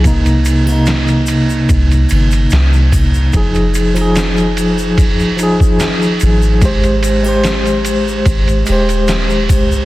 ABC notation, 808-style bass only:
X:1
M:4/4
L:1/8
Q:1/4=73
K:Fm
V:1 name="808-style bass" clef=bass
C,,4 C,, G,,, C,,2 | F,,,6- F,,, A,,,- | A,,,4 A,,, E,,,2 C,, |]